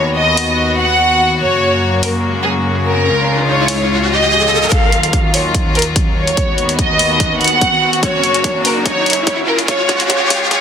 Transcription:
Already playing: D#2 D#3 B3 F#4
0.17 D#5
0.37 open hi-hat
0.79 F#5
1.41 F#2 C#3 A#3 C#5, riser
2.03 A#4, open hi-hat
2.44 G#4
2.86 A#4
3.06 C#2 G#3 F4
3.48 C#5
3.68 open hi-hat
4.10 D#5
4.72 D#2 D#3 F#3 F4 F5, kick, closed hi-hat, riser
4.92 closed hi-hat
5.03 closed hi-hat
5.13 kick, closed hi-hat
5.34 C#5, open hi-hat
5.54 kick, closed hi-hat
5.75 A#4, closed hi-hat
5.79 closed hi-hat
5.82 closed hi-hat
5.96 kick, closed hi-hat
6.17 C#5
6.27 closed hi-hat
6.37 D#2 D#3 B3 F#4, kick, closed hi-hat
6.58 closed hi-hat
6.69 closed hi-hat
6.79 D#5, kick, closed hi-hat
6.99 open hi-hat
7.20 kick, closed hi-hat
7.41 F#5, closed hi-hat
7.44 closed hi-hat
7.48 closed hi-hat
7.61 kick, closed hi-hat
7.93 closed hi-hat
8.03 F#2 C#3 A#3 C#5, kick, closed hi-hat
8.23 closed hi-hat
8.34 closed hi-hat
8.44 kick, closed hi-hat
8.65 A#4, open hi-hat
8.86 C#5, kick, closed hi-hat
9.06 closed hi-hat
9.10 closed hi-hat
9.13 closed hi-hat
9.27 kick, closed hi-hat
9.48 A#4
9.59 closed hi-hat
9.68 C#2 G#3 F4 C#5, kick, closed hi-hat
9.89 kick, closed hi-hat
10.00 closed hi-hat
10.10 C#5, kick, closed hi-hat
10.30 kick, open hi-hat
10.51 C#5, kick, closed hi-hat, reverse cymbal

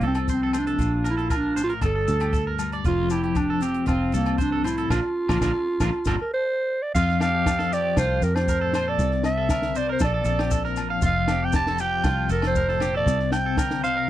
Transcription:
Already playing: F2 F3 A3 C4 G4
0.01 C2 C3 A4, closed hi-hat
0.07 C4
0.15 cross-stick, closed hi-hat, low agogo
0.28 C5, muted clean electric guitar stroke, kick, closed hi-hat, maracas
0.33 C4
0.43 A4
0.53 A3 C5, cross-stick, closed hi-hat, low agogo, maracas
0.59 D4
0.67 A4, closed hi-hat
0.78 A#1 A#2 F4, kick, closed hi-hat, maracas
1.04 A#4, cross-stick, closed hi-hat, low agogo, maracas
1.11 E4
1.17 A4, closed hi-hat
1.30 A#4, kick, cross-stick, closed hi-hat, low agogo, maracas
1.37 D4
1.56 A2 C5, closed hi-hat, maracas
1.64 F4
1.69 A#4, closed hi-hat
1.81 G1 G2 D4 A4, kick, cross-stick, closed hi-hat, low agogo, maracas
1.86 A4
1.95 A4
2.08 D2 A4, closed hi-hat, maracas
2.20 G4, cross-stick, closed hi-hat, low agogo
2.33 A4, kick, closed hi-hat, maracas
2.47 A#4
2.59 G3, closed hi-hat, low agogo, maracas
2.73 D5, closed hi-hat
2.84 F1 F2 F3 A3 C4 F4, kick, closed hi-hat, maracas
3.10 E4 G4, cross-stick, closed hi-hat, low agogo, maracas
3.24 G4, closed hi-hat
3.35 D4, kick, cross-stick, closed hi-hat, low agogo, maracas
3.50 A4
3.61 F3 C4 G4, closed hi-hat, maracas
3.74 closed hi-hat
3.86 F1 C4 F4, kick, cross-stick, closed hi-hat, low agogo, maracas
4.12 C2 C3 A#3 A4, closed hi-hat, maracas
4.26 cross-stick, closed hi-hat, low agogo
4.38 G2 D4 C5, kick, closed hi-hat, maracas
4.52 A4
4.64 A2 E4 C5, cross-stick, closed hi-hat, low agogo, maracas
4.78 A4, closed hi-hat
4.90 A#1 D3 F3 A#3 D4 F4 A#4, kick, snare, low agogo, maracas
5.29 A#1 D3 F3 A#3 D4 F4 A#4, kick, snare, low agogo, maracas
5.41 A#1 D3 F3 A#3 D4 F4 A#4, kick, snare, low agogo, maracas
5.80 A#1 D3 F3 A#3 D4 F4 A#4, kick, snare, low agogo, maracas
6.05 G1 A#2 D3 G3 G4 A4 A#4, kick, snare, low agogo, maracas
6.21 A#4
6.33 C5
6.82 D5
6.94 F2 F4 F5, kick, crash, maracas
7.09 snare
7.20 C4 G4 F5, snare, low agogo, maracas
7.34 G4
7.46 muted clean electric guitar stroke, kick, snare, low agogo, maracas
7.59 A4, snare
7.72 F3 G4 D5, maracas
7.97 C2 F4 G4 C5, kick, snare, low agogo, maracas
8.22 F2 G4 A#4, maracas
8.35 C5, snare, low agogo
8.48 A2 A#4, kick, maracas
8.61 A4
8.73 A#2 C5, snare, low agogo, maracas
8.88 A4 D5
8.99 C2 C3, kick, maracas
9.11 snare
9.23 C4 E5, snare, low agogo, maracas
9.38 A4
9.49 D3 A#4, kick, snare, low agogo, maracas
9.62 snare
9.75 C3 C5 D5, maracas
9.89 A#4 C5
9.99 A#1 A#2 A4, kick, snare, low agogo, maracas
10.04 D5
10.14 A4
10.24 A#1 C4 A4, maracas
10.39 G4, snare, low agogo
10.51 D4 A4, kick, maracas
10.65 A#4, snare
10.76 F3, low agogo, maracas
10.90 F5
11.02 F1 F2 F4 F5, kick, maracas
11.27 C4 G4, snare, low agogo, maracas
11.42 G4 G5
11.53 G4 A5, kick, snare, low agogo, maracas
11.67 A4, snare
11.78 F3 G4 G5, maracas
12.04 C2 F4 G4, kick, snare, low agogo, maracas
12.29 F1 G4 A4 A#4, maracas
12.42 snare, low agogo
12.47 C5
12.55 A2 A#4, kick, maracas
12.69 A4, snare
12.80 A#2 G4, snare, low agogo, maracas
12.95 A4 D5
13.06 C2 C3, kick, maracas
13.20 snare
13.32 C4 G5, muted clean electric guitar stroke, snare, low agogo, maracas
13.46 A4
13.57 D3 A#4, kick, snare, low agogo, maracas
13.71 snare
13.83 C3 C5 F5, maracas
13.97 A#4

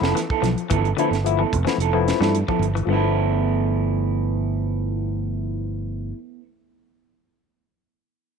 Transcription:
Already playing: F3 A3 B3 E4
0.01 F1 B3 E4 A4, snare
0.15 E3, snare, closed hi-hat
0.30 B3 E4 A4, muted fingered electric bass stroke, kick
0.42 B1 F3, snare, closed hi-hat
0.56 muted fingered electric bass stroke, closed hi-hat
0.70 G1 E3 F3 B3 E4 A4, kick, closed hi-hat
0.85 closed hi-hat
0.97 D3 F3 A3 B3 E4 A4, muted clean electric guitar stroke, closed hi-hat
1.11 G1, snare, closed hi-hat
1.24 F3 A3 B3 E4, closed hi-hat
1.39 E3 B3 E4 A4
1.53 F1, kick, closed hi-hat
1.65 E3 F3 A3 B3 E4, snare, closed hi-hat
1.78 F1 F3 E4 A4, muted clean electric guitar stroke, closed hi-hat
1.93 F3 A3 B3 E4
2.08 snare, closed hi-hat
2.20 G2 E3 B3 E4 A4, snare
2.35 closed hi-hat
2.48 F3 B3 E4 A4, kick
2.59 G1, closed hi-hat
2.75 E3, closed hi-hat
2.85 G1 G2 F3 A3, muted clean electric guitar stroke
2.90 B3 E4 A4

